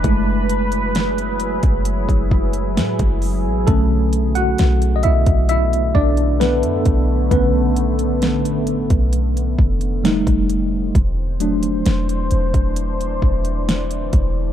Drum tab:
HH |x-xxxxxxxx-xxxo-|x-xxxxxxxx-xxxx-|x-xxxxxxxx-xxxx-|x-xxxxxxxx-xxxx-|
SD |----o-------o---|----o-------o---|----o-------o---|----o-------o---|
BD |o------o-oo--o--|o------o--o---o-|o------o--o--o--|o------o--o---o-|